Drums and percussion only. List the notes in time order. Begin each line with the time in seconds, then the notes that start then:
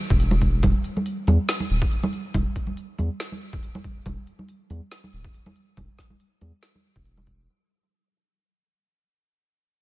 0.10 kick
0.20 closed hi-hat
0.31 high conga
0.41 kick, closed hi-hat
0.63 kick, closed hi-hat, high conga
0.84 closed hi-hat
0.97 high conga
1.06 closed hi-hat
1.27 closed hi-hat, high conga
1.49 snare, closed hi-hat
1.60 high conga
1.70 closed hi-hat
1.82 kick
1.92 closed hi-hat
2.03 high conga
2.13 closed hi-hat
2.34 kick, closed hi-hat, high conga
2.56 kick, closed hi-hat
2.67 high conga
2.77 closed hi-hat
2.99 closed hi-hat, high conga
3.20 snare, closed hi-hat
3.32 high conga
3.42 closed hi-hat
3.53 kick
3.63 closed hi-hat
3.75 high conga
3.84 kick, closed hi-hat
4.06 kick, closed hi-hat, high conga
4.27 closed hi-hat
4.39 high conga
4.49 closed hi-hat
4.70 closed hi-hat, high conga
4.92 snare, closed hi-hat
5.04 high conga
5.13 closed hi-hat
5.25 kick
5.34 closed hi-hat
5.46 high conga
5.56 closed hi-hat
5.77 kick, closed hi-hat, high conga
5.99 kick, snare, closed hi-hat
6.10 high conga
6.20 closed hi-hat
6.41 closed hi-hat, high conga
6.63 snare, closed hi-hat
6.75 high conga
6.84 closed hi-hat
6.96 kick
7.06 closed hi-hat
7.17 high conga
7.27 kick, closed hi-hat